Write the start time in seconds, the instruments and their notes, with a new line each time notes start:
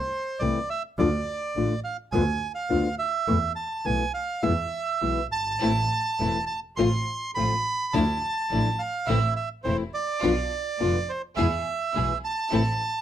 Already playing: bandoneon C5
0.39 double bass C2, nylon-string guitar C3 E3 A3 C4 E4, bandoneon D5
0.70 bandoneon E5
0.98 double bass D2, nylon-string guitar D3 A3 D4 F4, bandoneon D5
1.55 double bass A1, nylon-string guitar D3 A3 D4 F4
1.84 bandoneon F5
2.12 double bass D2, nylon-string guitar D3 B3 D4 F4, bandoneon G#5
2.55 bandoneon F5
2.69 double bass D2, nylon-string guitar D3 B3 D4 F4
2.99 bandoneon E5
3.27 double bass E2, nylon-string guitar E3 A3 B3 E4
3.56 bandoneon A5
3.85 double bass B1, nylon-string guitar E3 A3 B3 E4, bandoneon G#5
4.14 bandoneon F5
4.43 double bass E2, nylon-string guitar B2 E3 G#3 B3 E4, bandoneon E5
5.01 double bass B1, nylon-string guitar B2 E3 G#3 B3 E4
5.32 double bass G1, bandoneon A5
5.61 double bass A1, nylon-string guitar E3 A3 C4 E4, string section A3 C4 E4
6.19 double bass E1, nylon-string guitar E3 A3 C4 E4, string section A3 C4 E4
6.46 bandoneon A5
6.77 double bass A1, nylon-string guitar F3 A3 C4 F4, string section A3 C4 F4, bandoneon C6
7.35 double bass A1, nylon-string guitar F3 A3 C4 F4, string section A3 C4 F4, bandoneon B5
7.93 double bass D2, nylon-string guitar D3 F3 A3 D4 E4, string section F3 D4 E4, bandoneon A5
8.50 double bass A1, nylon-string guitar D3 F3 A3 D4 E4, string section F3 D4 E4
8.79 bandoneon F5
9.07 double bass A1, nylon-string guitar E3 A3 C4 E4, string section A3 C4 E4, bandoneon E5
9.36 bandoneon E5
9.64 double bass E1, nylon-string guitar E3 A3 C4 E4, string section A3 C4 E4, bandoneon C5
9.94 bandoneon D5
10.22 double bass B1, nylon-string guitar B2 D3 B3 D4 F4, string section B3 D4 F4
10.80 double bass F1, nylon-string guitar B2 D3 B3 D4 F4, string section B3 D4 F4
11.09 bandoneon C5
11.36 double bass E2, nylon-string guitar B2 E3 G#3 B3 E4, string section B3 E4 G#4, bandoneon E5
11.94 double bass B1, nylon-string guitar B2 E3 G#3 B3 E4, string section B3 E4 G#4
12.24 bandoneon A5
12.51 double bass A1, nylon-string guitar E3 A3 C4 E4, string section C4 E4 A4